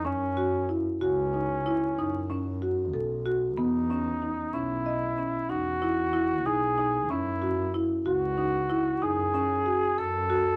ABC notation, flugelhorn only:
X:1
M:11/8
L:1/8
Q:1/4=94
K:F#dor
V:1 name="Flugelhorn"
C2 z C4 z4 | D3 E3 F3 G2 | E2 z F3 G3 A2 |]